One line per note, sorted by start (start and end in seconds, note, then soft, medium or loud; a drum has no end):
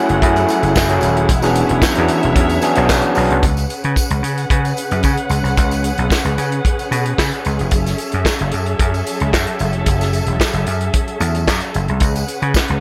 0.00 0.22 F#3 loud
0.00 1.26 F#3 medium
0.00 0.23 A3 medium
0.00 1.26 A3 medium
0.00 0.23 C#4 medium
0.00 0.23 E4 medium
0.00 3.38 E4 medium
0.00 0.23 G#4 loud
0.00 3.38 G#4 medium
0.00 3.39 F#5 medium
0.09 0.20 F#1 medium
0.09 closed hi-hat soft
0.22 0.44 F#2 loud
0.22 0.63 F#3 medium
0.22 0.63 A3 medium
0.22 0.63 C#4 medium
0.22 0.64 E4 medium
0.22 0.64 G#4 loud
0.22 kick loud
0.22 closed hi-hat loud
0.36 closed hi-hat soft
0.36 tambourine soft
0.49 closed hi-hat medium
0.49 tambourine medium
0.63 0.73 F#1 medium
0.63 closed hi-hat soft
0.63 tambourine soft
0.76 0.97 F#1 loud
0.76 kick loud
0.76 snare loud
0.76 clap medium
0.76 tambourine loud
0.89 1.21 F#3 medium
0.89 1.21 A3 medium
0.89 1.22 C#4 medium
0.89 1.22 E4 medium
0.89 1.22 G#4 loud
0.89 closed hi-hat medium
1.01 1.24 D#1 medium
1.01 closed hi-hat medium
1.01 tambourine medium
1.17 closed hi-hat medium
1.28 1.62 E1 loud
1.28 3.41 E3 medium
1.28 3.41 C#5 medium
1.28 3.40 E5 medium
1.28 kick loud
1.28 closed hi-hat loud
1.28 tambourine medium
1.42 1.75 F#3 loud
1.42 1.75 B3 loud
1.42 1.75 C#4 medium
1.42 1.75 D4 loud
1.42 1.75 G#4 loud
1.42 snare soft
1.42 closed hi-hat soft
1.42 tambourine medium
1.55 closed hi-hat medium
1.55 tambourine medium
1.69 1.80 E1 medium
1.69 closed hi-hat soft
1.82 kick loud
1.82 snare loud
1.82 clap medium
1.82 tambourine loud
1.95 2.07 E2 loud
1.95 2.36 F#3 loud
1.95 2.36 B3 medium
1.95 2.36 C#4 medium
1.95 2.36 D4 medium
1.95 2.36 G#4 loud
1.95 closed hi-hat soft
2.08 closed hi-hat medium
2.08 tambourine medium
2.23 2.34 E1 loud
2.23 closed hi-hat soft
2.36 2.57 E2 loud
2.36 kick loud
2.36 closed hi-hat loud
2.49 closed hi-hat soft
2.49 tambourine soft
2.62 2.71 F#3 medium
2.62 2.71 B3 medium
2.62 2.71 C#4 medium
2.62 2.71 D4 medium
2.62 2.71 G#4 medium
2.62 closed hi-hat medium
2.62 tambourine medium
2.75 2.87 B1 medium
2.75 3.00 F#3 medium
2.75 3.00 B3 medium
2.75 3.01 C#4 medium
2.75 3.01 D4 medium
2.75 3.01 G#4 loud
2.75 closed hi-hat medium
2.75 tambourine soft
2.89 3.01 B1 medium
2.89 kick loud
2.89 snare loud
2.89 clap loud
2.89 tambourine medium
3.02 closed hi-hat medium
3.15 3.28 B1 medium
3.15 3.32 F#3 medium
3.15 3.33 B3 medium
3.15 3.33 C#4 medium
3.15 3.33 D4 medium
3.15 3.33 G#4 loud
3.15 open hi-hat medium
3.15 tambourine medium
3.30 3.41 C2 medium
3.30 closed hi-hat medium
3.43 3.64 C#2 medium
3.43 7.69 C#3 medium
3.43 11.98 C#4 medium
3.43 12.80 G#4 medium
3.43 7.69 B4 medium
3.43 7.68 F#5 medium
3.43 kick loud
3.43 closed hi-hat medium
3.43 tambourine medium
3.57 closed hi-hat soft
3.57 tambourine medium
3.70 closed hi-hat medium
3.70 tambourine soft
3.84 3.94 C#3 medium
3.84 closed hi-hat soft
3.96 kick medium
3.96 closed hi-hat medium
3.96 tambourine medium
4.10 4.21 C#2 loud
4.10 closed hi-hat soft
4.22 4.44 C#3 medium
4.22 closed hi-hat medium
4.22 tambourine soft
4.37 closed hi-hat soft
4.37 tambourine soft
4.50 4.72 C#3 medium
4.50 kick loud
4.50 closed hi-hat medium
4.65 closed hi-hat soft
4.65 tambourine soft
4.77 closed hi-hat medium
4.77 tambourine medium
4.91 5.01 F#2 medium
4.91 closed hi-hat soft
4.91 tambourine soft
5.03 5.15 C#3 medium
5.03 kick medium
5.03 closed hi-hat medium
5.03 tambourine medium
5.17 closed hi-hat soft
5.29 5.41 C#2 medium
5.29 closed hi-hat medium
5.29 tambourine soft
5.43 5.54 C2 medium
5.43 closed hi-hat soft
5.43 tambourine soft
5.57 5.90 C#2 loud
5.57 kick loud
5.57 closed hi-hat medium
5.57 tambourine medium
5.71 closed hi-hat soft
5.71 tambourine medium
5.84 closed hi-hat medium
5.84 tambourine medium
5.98 6.08 B1 medium
5.98 closed hi-hat soft
6.10 kick loud
6.10 snare medium
6.10 clap medium
6.10 tambourine medium
6.25 6.35 C#2 medium
6.25 closed hi-hat soft
6.38 6.59 C#3 medium
6.38 closed hi-hat medium
6.38 tambourine soft
6.52 closed hi-hat soft
6.65 kick loud
6.65 closed hi-hat medium
6.79 closed hi-hat soft
6.79 tambourine soft
6.91 7.13 B2 medium
6.91 closed hi-hat medium
6.91 tambourine medium
7.05 closed hi-hat soft
7.18 7.30 C#3 medium
7.18 kick medium
7.18 snare medium
7.18 clap medium
7.18 tambourine medium
7.31 closed hi-hat soft
7.45 7.57 C#2 medium
7.45 closed hi-hat medium
7.45 tambourine soft
7.59 7.71 F1 medium
7.59 closed hi-hat soft
7.59 tambourine soft
7.71 7.93 F#1 medium
7.71 11.97 F#3 medium
7.71 11.97 A4 medium
7.71 11.97 E5 medium
7.71 kick loud
7.71 closed hi-hat medium
7.71 tambourine medium
7.86 snare soft
7.86 closed hi-hat soft
7.86 tambourine medium
7.98 closed hi-hat medium
7.98 tambourine medium
8.12 8.23 F#2 medium
8.12 closed hi-hat soft
8.25 kick medium
8.25 snare loud
8.25 clap medium
8.25 tambourine loud
8.39 8.50 F#1 loud
8.39 closed hi-hat soft
8.51 8.74 F#2 medium
8.51 closed hi-hat medium
8.51 tambourine soft
8.66 closed hi-hat soft
8.79 9.01 F#2 medium
8.79 kick loud
8.79 closed hi-hat medium
8.94 closed hi-hat soft
8.94 tambourine soft
9.06 closed hi-hat medium
9.06 tambourine medium
9.20 9.31 C#2 medium
9.20 closed hi-hat soft
9.33 9.45 F#2 medium
9.33 kick medium
9.33 snare medium
9.33 clap medium
9.33 tambourine medium
9.47 closed hi-hat soft
9.59 9.74 F#1 medium
9.59 closed hi-hat medium
9.59 tambourine soft
9.73 9.84 F1 loud
9.73 closed hi-hat soft
9.86 10.20 F#1 loud
9.86 kick loud
9.86 closed hi-hat medium
9.86 tambourine medium
10.01 snare soft
10.01 closed hi-hat soft
10.01 tambourine medium
10.13 closed hi-hat medium
10.13 tambourine medium
10.26 10.37 E1 medium
10.26 closed hi-hat soft
10.40 kick medium
10.40 snare loud
10.40 clap medium
10.40 tambourine medium
10.53 10.64 F#1 medium
10.53 closed hi-hat soft
10.66 10.88 F#2 medium
10.66 closed hi-hat medium
10.66 tambourine soft
10.81 closed hi-hat soft
10.93 kick loud
10.93 closed hi-hat medium
11.08 closed hi-hat soft
11.20 11.48 E2 medium
11.20 closed hi-hat medium
11.20 tambourine medium
11.35 closed hi-hat soft
11.35 tambourine soft
11.47 11.59 F#2 loud
11.47 kick medium
11.47 snare loud
11.47 clap medium
11.47 tambourine medium
11.60 closed hi-hat soft
11.74 11.86 F#1 medium
11.74 closed hi-hat medium
11.74 tambourine soft
11.88 12.01 C2 medium
11.88 closed hi-hat soft
11.99 12.23 C#2 medium
11.99 12.80 C#3 medium
11.99 12.80 C#4 medium
11.99 12.80 B4 medium
11.99 12.80 F#5 medium
11.99 kick loud
11.99 closed hi-hat medium
11.99 tambourine medium
12.15 closed hi-hat soft
12.15 tambourine medium
12.28 closed hi-hat medium
12.28 tambourine soft
12.42 12.52 C#3 medium
12.42 closed hi-hat soft
12.54 kick loud
12.54 snare medium
12.54 clap medium
12.54 tambourine medium
12.68 12.80 C#2 medium
12.68 closed hi-hat soft